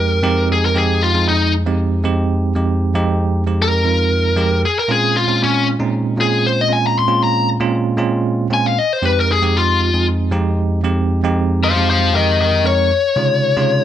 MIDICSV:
0, 0, Header, 1, 3, 480
1, 0, Start_track
1, 0, Key_signature, -4, "minor"
1, 0, Tempo, 516796
1, 459, Time_signature, 4, 2, 24, 8
1, 12856, End_track
2, 0, Start_track
2, 0, Title_t, "Lead electric guitar"
2, 0, Program_c, 0, 29
2, 0, Note_on_c, 0, 70, 91
2, 444, Note_off_c, 0, 70, 0
2, 484, Note_on_c, 0, 68, 83
2, 596, Note_off_c, 0, 68, 0
2, 609, Note_on_c, 0, 70, 73
2, 707, Note_off_c, 0, 70, 0
2, 725, Note_on_c, 0, 68, 86
2, 945, Note_off_c, 0, 68, 0
2, 955, Note_on_c, 0, 65, 94
2, 1180, Note_off_c, 0, 65, 0
2, 1194, Note_on_c, 0, 63, 86
2, 1419, Note_off_c, 0, 63, 0
2, 3363, Note_on_c, 0, 70, 101
2, 4283, Note_off_c, 0, 70, 0
2, 4322, Note_on_c, 0, 68, 78
2, 4435, Note_off_c, 0, 68, 0
2, 4451, Note_on_c, 0, 70, 70
2, 4548, Note_off_c, 0, 70, 0
2, 4568, Note_on_c, 0, 68, 80
2, 4787, Note_off_c, 0, 68, 0
2, 4800, Note_on_c, 0, 65, 88
2, 5023, Note_off_c, 0, 65, 0
2, 5048, Note_on_c, 0, 61, 80
2, 5267, Note_off_c, 0, 61, 0
2, 5765, Note_on_c, 0, 68, 88
2, 5986, Note_off_c, 0, 68, 0
2, 6005, Note_on_c, 0, 72, 76
2, 6117, Note_off_c, 0, 72, 0
2, 6141, Note_on_c, 0, 75, 80
2, 6234, Note_off_c, 0, 75, 0
2, 6249, Note_on_c, 0, 80, 86
2, 6359, Note_off_c, 0, 80, 0
2, 6379, Note_on_c, 0, 82, 84
2, 6473, Note_off_c, 0, 82, 0
2, 6490, Note_on_c, 0, 84, 77
2, 6709, Note_off_c, 0, 84, 0
2, 6722, Note_on_c, 0, 82, 91
2, 6945, Note_off_c, 0, 82, 0
2, 7928, Note_on_c, 0, 80, 88
2, 8040, Note_off_c, 0, 80, 0
2, 8045, Note_on_c, 0, 77, 81
2, 8160, Note_off_c, 0, 77, 0
2, 8160, Note_on_c, 0, 75, 91
2, 8293, Note_off_c, 0, 75, 0
2, 8293, Note_on_c, 0, 72, 78
2, 8391, Note_off_c, 0, 72, 0
2, 8409, Note_on_c, 0, 71, 91
2, 8521, Note_off_c, 0, 71, 0
2, 8546, Note_on_c, 0, 70, 82
2, 8638, Note_off_c, 0, 70, 0
2, 8657, Note_on_c, 0, 68, 91
2, 8873, Note_off_c, 0, 68, 0
2, 8889, Note_on_c, 0, 65, 92
2, 9342, Note_off_c, 0, 65, 0
2, 10807, Note_on_c, 0, 72, 71
2, 10812, Note_on_c, 0, 77, 86
2, 11031, Note_off_c, 0, 77, 0
2, 11035, Note_off_c, 0, 72, 0
2, 11051, Note_on_c, 0, 72, 75
2, 11058, Note_on_c, 0, 77, 76
2, 11262, Note_off_c, 0, 72, 0
2, 11273, Note_off_c, 0, 77, 0
2, 11285, Note_on_c, 0, 70, 67
2, 11297, Note_on_c, 0, 75, 79
2, 11499, Note_off_c, 0, 70, 0
2, 11514, Note_off_c, 0, 75, 0
2, 11527, Note_on_c, 0, 70, 77
2, 11531, Note_on_c, 0, 75, 81
2, 11740, Note_off_c, 0, 70, 0
2, 11749, Note_off_c, 0, 75, 0
2, 11763, Note_on_c, 0, 73, 80
2, 12856, Note_off_c, 0, 73, 0
2, 12856, End_track
3, 0, Start_track
3, 0, Title_t, "Tine electric piano"
3, 0, Program_c, 1, 4
3, 0, Note_on_c, 1, 41, 70
3, 0, Note_on_c, 1, 56, 69
3, 0, Note_on_c, 1, 60, 65
3, 0, Note_on_c, 1, 63, 67
3, 0, Note_on_c, 1, 67, 82
3, 177, Note_off_c, 1, 56, 0
3, 178, Note_off_c, 1, 41, 0
3, 179, Note_off_c, 1, 60, 0
3, 180, Note_off_c, 1, 63, 0
3, 180, Note_off_c, 1, 67, 0
3, 213, Note_on_c, 1, 41, 93
3, 214, Note_on_c, 1, 56, 85
3, 215, Note_on_c, 1, 60, 87
3, 218, Note_on_c, 1, 63, 93
3, 218, Note_on_c, 1, 67, 104
3, 662, Note_off_c, 1, 41, 0
3, 663, Note_off_c, 1, 56, 0
3, 663, Note_off_c, 1, 60, 0
3, 664, Note_off_c, 1, 63, 0
3, 665, Note_off_c, 1, 67, 0
3, 692, Note_on_c, 1, 56, 73
3, 692, Note_on_c, 1, 60, 73
3, 694, Note_on_c, 1, 41, 79
3, 699, Note_on_c, 1, 63, 75
3, 701, Note_on_c, 1, 67, 89
3, 1034, Note_off_c, 1, 56, 0
3, 1034, Note_off_c, 1, 60, 0
3, 1035, Note_off_c, 1, 41, 0
3, 1038, Note_off_c, 1, 63, 0
3, 1039, Note_off_c, 1, 67, 0
3, 1061, Note_on_c, 1, 41, 79
3, 1061, Note_on_c, 1, 56, 70
3, 1064, Note_on_c, 1, 60, 72
3, 1066, Note_on_c, 1, 63, 73
3, 1069, Note_on_c, 1, 68, 78
3, 1505, Note_off_c, 1, 41, 0
3, 1505, Note_off_c, 1, 56, 0
3, 1507, Note_off_c, 1, 60, 0
3, 1507, Note_off_c, 1, 63, 0
3, 1509, Note_off_c, 1, 68, 0
3, 1541, Note_on_c, 1, 41, 83
3, 1544, Note_on_c, 1, 56, 74
3, 1545, Note_on_c, 1, 63, 75
3, 1546, Note_on_c, 1, 60, 75
3, 1551, Note_on_c, 1, 67, 92
3, 1870, Note_off_c, 1, 41, 0
3, 1872, Note_off_c, 1, 56, 0
3, 1872, Note_off_c, 1, 63, 0
3, 1873, Note_off_c, 1, 60, 0
3, 1875, Note_off_c, 1, 67, 0
3, 1895, Note_on_c, 1, 41, 81
3, 1895, Note_on_c, 1, 56, 81
3, 1896, Note_on_c, 1, 60, 78
3, 1899, Note_on_c, 1, 63, 75
3, 1902, Note_on_c, 1, 67, 100
3, 2343, Note_off_c, 1, 41, 0
3, 2343, Note_off_c, 1, 56, 0
3, 2343, Note_off_c, 1, 60, 0
3, 2345, Note_off_c, 1, 63, 0
3, 2347, Note_off_c, 1, 67, 0
3, 2371, Note_on_c, 1, 41, 81
3, 2372, Note_on_c, 1, 56, 79
3, 2373, Note_on_c, 1, 60, 74
3, 2379, Note_on_c, 1, 67, 89
3, 2380, Note_on_c, 1, 63, 72
3, 2714, Note_off_c, 1, 41, 0
3, 2714, Note_off_c, 1, 56, 0
3, 2715, Note_off_c, 1, 60, 0
3, 2718, Note_off_c, 1, 63, 0
3, 2718, Note_off_c, 1, 67, 0
3, 2735, Note_on_c, 1, 41, 94
3, 2740, Note_on_c, 1, 56, 83
3, 2740, Note_on_c, 1, 60, 85
3, 2743, Note_on_c, 1, 63, 88
3, 2743, Note_on_c, 1, 67, 107
3, 3182, Note_off_c, 1, 41, 0
3, 3184, Note_off_c, 1, 60, 0
3, 3185, Note_off_c, 1, 56, 0
3, 3186, Note_off_c, 1, 63, 0
3, 3186, Note_off_c, 1, 67, 0
3, 3216, Note_on_c, 1, 41, 70
3, 3218, Note_on_c, 1, 56, 71
3, 3222, Note_on_c, 1, 60, 70
3, 3223, Note_on_c, 1, 63, 65
3, 3225, Note_on_c, 1, 67, 83
3, 3548, Note_off_c, 1, 41, 0
3, 3549, Note_off_c, 1, 56, 0
3, 3551, Note_off_c, 1, 60, 0
3, 3552, Note_off_c, 1, 63, 0
3, 3552, Note_off_c, 1, 67, 0
3, 3573, Note_on_c, 1, 41, 70
3, 3576, Note_on_c, 1, 56, 60
3, 3579, Note_on_c, 1, 60, 61
3, 3580, Note_on_c, 1, 63, 64
3, 3582, Note_on_c, 1, 65, 73
3, 4022, Note_off_c, 1, 41, 0
3, 4024, Note_off_c, 1, 56, 0
3, 4025, Note_off_c, 1, 60, 0
3, 4026, Note_off_c, 1, 63, 0
3, 4027, Note_off_c, 1, 65, 0
3, 4051, Note_on_c, 1, 41, 93
3, 4053, Note_on_c, 1, 56, 87
3, 4054, Note_on_c, 1, 60, 87
3, 4057, Note_on_c, 1, 63, 83
3, 4061, Note_on_c, 1, 67, 102
3, 4295, Note_off_c, 1, 41, 0
3, 4296, Note_off_c, 1, 56, 0
3, 4297, Note_off_c, 1, 60, 0
3, 4298, Note_off_c, 1, 63, 0
3, 4300, Note_off_c, 1, 67, 0
3, 4535, Note_on_c, 1, 46, 78
3, 4539, Note_on_c, 1, 56, 71
3, 4539, Note_on_c, 1, 60, 73
3, 4540, Note_on_c, 1, 61, 73
3, 4540, Note_on_c, 1, 65, 87
3, 4876, Note_off_c, 1, 46, 0
3, 4878, Note_off_c, 1, 60, 0
3, 4879, Note_off_c, 1, 56, 0
3, 4879, Note_off_c, 1, 61, 0
3, 4879, Note_off_c, 1, 65, 0
3, 4898, Note_on_c, 1, 46, 70
3, 4899, Note_on_c, 1, 60, 64
3, 4902, Note_on_c, 1, 56, 66
3, 4902, Note_on_c, 1, 61, 69
3, 4904, Note_on_c, 1, 65, 80
3, 5345, Note_off_c, 1, 46, 0
3, 5345, Note_off_c, 1, 60, 0
3, 5346, Note_off_c, 1, 56, 0
3, 5347, Note_off_c, 1, 61, 0
3, 5347, Note_off_c, 1, 65, 0
3, 5382, Note_on_c, 1, 46, 81
3, 5382, Note_on_c, 1, 56, 75
3, 5383, Note_on_c, 1, 60, 76
3, 5386, Note_on_c, 1, 61, 76
3, 5386, Note_on_c, 1, 63, 93
3, 5712, Note_off_c, 1, 46, 0
3, 5712, Note_off_c, 1, 56, 0
3, 5712, Note_off_c, 1, 60, 0
3, 5714, Note_off_c, 1, 61, 0
3, 5714, Note_off_c, 1, 63, 0
3, 5730, Note_on_c, 1, 46, 69
3, 5734, Note_on_c, 1, 56, 68
3, 5736, Note_on_c, 1, 60, 64
3, 5737, Note_on_c, 1, 61, 66
3, 5738, Note_on_c, 1, 65, 81
3, 6182, Note_off_c, 1, 46, 0
3, 6184, Note_off_c, 1, 56, 0
3, 6185, Note_off_c, 1, 60, 0
3, 6185, Note_off_c, 1, 61, 0
3, 6186, Note_off_c, 1, 65, 0
3, 6209, Note_on_c, 1, 46, 70
3, 6211, Note_on_c, 1, 60, 62
3, 6213, Note_on_c, 1, 56, 59
3, 6215, Note_on_c, 1, 65, 74
3, 6217, Note_on_c, 1, 61, 61
3, 6554, Note_off_c, 1, 46, 0
3, 6555, Note_off_c, 1, 60, 0
3, 6556, Note_off_c, 1, 56, 0
3, 6557, Note_off_c, 1, 65, 0
3, 6558, Note_off_c, 1, 61, 0
3, 6571, Note_on_c, 1, 46, 80
3, 6574, Note_on_c, 1, 61, 70
3, 6575, Note_on_c, 1, 56, 71
3, 6576, Note_on_c, 1, 60, 72
3, 6577, Note_on_c, 1, 65, 88
3, 7022, Note_off_c, 1, 46, 0
3, 7023, Note_off_c, 1, 56, 0
3, 7023, Note_off_c, 1, 61, 0
3, 7024, Note_off_c, 1, 60, 0
3, 7025, Note_off_c, 1, 65, 0
3, 7058, Note_on_c, 1, 46, 95
3, 7061, Note_on_c, 1, 56, 82
3, 7063, Note_on_c, 1, 60, 83
3, 7064, Note_on_c, 1, 61, 86
3, 7066, Note_on_c, 1, 65, 100
3, 7390, Note_off_c, 1, 46, 0
3, 7392, Note_off_c, 1, 56, 0
3, 7393, Note_off_c, 1, 60, 0
3, 7394, Note_off_c, 1, 61, 0
3, 7395, Note_off_c, 1, 65, 0
3, 7403, Note_on_c, 1, 46, 88
3, 7404, Note_on_c, 1, 56, 82
3, 7409, Note_on_c, 1, 60, 75
3, 7411, Note_on_c, 1, 61, 82
3, 7413, Note_on_c, 1, 65, 100
3, 7859, Note_off_c, 1, 46, 0
3, 7860, Note_off_c, 1, 56, 0
3, 7862, Note_off_c, 1, 60, 0
3, 7863, Note_off_c, 1, 61, 0
3, 7864, Note_off_c, 1, 65, 0
3, 7895, Note_on_c, 1, 60, 76
3, 7896, Note_on_c, 1, 46, 79
3, 7899, Note_on_c, 1, 56, 73
3, 7899, Note_on_c, 1, 65, 84
3, 7901, Note_on_c, 1, 61, 72
3, 8139, Note_off_c, 1, 46, 0
3, 8139, Note_off_c, 1, 60, 0
3, 8141, Note_off_c, 1, 56, 0
3, 8141, Note_off_c, 1, 65, 0
3, 8142, Note_off_c, 1, 61, 0
3, 8379, Note_on_c, 1, 41, 84
3, 8381, Note_on_c, 1, 56, 70
3, 8384, Note_on_c, 1, 60, 77
3, 8386, Note_on_c, 1, 63, 74
3, 8387, Note_on_c, 1, 67, 88
3, 8720, Note_off_c, 1, 41, 0
3, 8721, Note_off_c, 1, 56, 0
3, 8722, Note_off_c, 1, 60, 0
3, 8723, Note_off_c, 1, 63, 0
3, 8724, Note_off_c, 1, 67, 0
3, 8748, Note_on_c, 1, 56, 73
3, 8748, Note_on_c, 1, 60, 69
3, 8750, Note_on_c, 1, 41, 75
3, 8752, Note_on_c, 1, 63, 72
3, 8755, Note_on_c, 1, 67, 86
3, 9191, Note_off_c, 1, 56, 0
3, 9191, Note_off_c, 1, 60, 0
3, 9192, Note_off_c, 1, 41, 0
3, 9193, Note_off_c, 1, 63, 0
3, 9195, Note_off_c, 1, 67, 0
3, 9226, Note_on_c, 1, 41, 72
3, 9230, Note_on_c, 1, 56, 63
3, 9230, Note_on_c, 1, 63, 63
3, 9233, Note_on_c, 1, 60, 65
3, 9235, Note_on_c, 1, 68, 78
3, 9555, Note_off_c, 1, 41, 0
3, 9557, Note_off_c, 1, 56, 0
3, 9557, Note_off_c, 1, 63, 0
3, 9559, Note_off_c, 1, 60, 0
3, 9560, Note_off_c, 1, 68, 0
3, 9579, Note_on_c, 1, 41, 90
3, 9581, Note_on_c, 1, 56, 84
3, 9581, Note_on_c, 1, 60, 81
3, 9587, Note_on_c, 1, 63, 89
3, 9587, Note_on_c, 1, 67, 99
3, 10028, Note_off_c, 1, 41, 0
3, 10028, Note_off_c, 1, 60, 0
3, 10029, Note_off_c, 1, 56, 0
3, 10032, Note_off_c, 1, 63, 0
3, 10032, Note_off_c, 1, 67, 0
3, 10062, Note_on_c, 1, 41, 80
3, 10067, Note_on_c, 1, 56, 79
3, 10069, Note_on_c, 1, 60, 77
3, 10070, Note_on_c, 1, 63, 78
3, 10072, Note_on_c, 1, 67, 98
3, 10402, Note_off_c, 1, 41, 0
3, 10404, Note_off_c, 1, 56, 0
3, 10405, Note_off_c, 1, 60, 0
3, 10406, Note_off_c, 1, 63, 0
3, 10407, Note_off_c, 1, 67, 0
3, 10434, Note_on_c, 1, 41, 95
3, 10435, Note_on_c, 1, 56, 88
3, 10439, Note_on_c, 1, 60, 88
3, 10443, Note_on_c, 1, 63, 91
3, 10446, Note_on_c, 1, 67, 99
3, 10874, Note_off_c, 1, 41, 0
3, 10875, Note_off_c, 1, 56, 0
3, 10877, Note_off_c, 1, 60, 0
3, 10879, Note_off_c, 1, 63, 0
3, 10880, Note_off_c, 1, 67, 0
3, 10918, Note_on_c, 1, 41, 75
3, 10923, Note_on_c, 1, 56, 72
3, 10926, Note_on_c, 1, 60, 70
3, 10926, Note_on_c, 1, 63, 71
3, 10928, Note_on_c, 1, 67, 85
3, 11241, Note_off_c, 1, 41, 0
3, 11244, Note_off_c, 1, 56, 0
3, 11245, Note_off_c, 1, 63, 0
3, 11246, Note_off_c, 1, 60, 0
3, 11246, Note_off_c, 1, 67, 0
3, 11266, Note_on_c, 1, 41, 75
3, 11268, Note_on_c, 1, 56, 65
3, 11268, Note_on_c, 1, 60, 66
3, 11272, Note_on_c, 1, 63, 68
3, 11274, Note_on_c, 1, 67, 80
3, 11711, Note_off_c, 1, 41, 0
3, 11712, Note_off_c, 1, 56, 0
3, 11712, Note_off_c, 1, 60, 0
3, 11714, Note_off_c, 1, 63, 0
3, 11715, Note_off_c, 1, 67, 0
3, 11743, Note_on_c, 1, 41, 75
3, 11744, Note_on_c, 1, 56, 73
3, 11746, Note_on_c, 1, 60, 70
3, 11746, Note_on_c, 1, 63, 71
3, 11752, Note_on_c, 1, 70, 86
3, 11983, Note_off_c, 1, 41, 0
3, 11984, Note_off_c, 1, 56, 0
3, 11985, Note_off_c, 1, 60, 0
3, 11985, Note_off_c, 1, 63, 0
3, 11988, Note_off_c, 1, 70, 0
3, 12222, Note_on_c, 1, 56, 72
3, 12223, Note_on_c, 1, 48, 73
3, 12223, Note_on_c, 1, 49, 85
3, 12228, Note_on_c, 1, 63, 70
3, 12229, Note_on_c, 1, 65, 86
3, 12562, Note_off_c, 1, 48, 0
3, 12562, Note_off_c, 1, 49, 0
3, 12562, Note_off_c, 1, 56, 0
3, 12564, Note_off_c, 1, 63, 0
3, 12565, Note_off_c, 1, 65, 0
3, 12596, Note_on_c, 1, 49, 89
3, 12599, Note_on_c, 1, 48, 80
3, 12600, Note_on_c, 1, 56, 80
3, 12602, Note_on_c, 1, 63, 82
3, 12605, Note_on_c, 1, 65, 96
3, 12856, Note_off_c, 1, 48, 0
3, 12856, Note_off_c, 1, 49, 0
3, 12856, Note_off_c, 1, 56, 0
3, 12856, Note_off_c, 1, 63, 0
3, 12856, Note_off_c, 1, 65, 0
3, 12856, End_track
0, 0, End_of_file